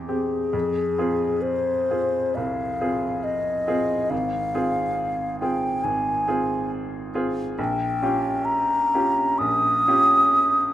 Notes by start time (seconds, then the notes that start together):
Already playing: E2 C4 G4
0.08 C4 G4 G#4
0.53 F2
0.98 C4 F4 G#4
1.42 C5
1.90 C4 F4 G#4
2.35 C2 F5
2.80 C4 F4 G#4
3.24 D#5
3.67 C4 F4 G#4
4.10 G#1 F5
4.54 C4 F4 G#4
5.40 C4 F4 G#4 G5
5.84 G#1 G#5
6.28 C4 F4 G#4
7.14 C4 F4 G#4
7.59 A#1 G5
8.02 C#4 F4 G4
8.45 A#5
8.94 C#4 F4 G4
9.38 A#1 D#6
9.88 C#4 F4 G4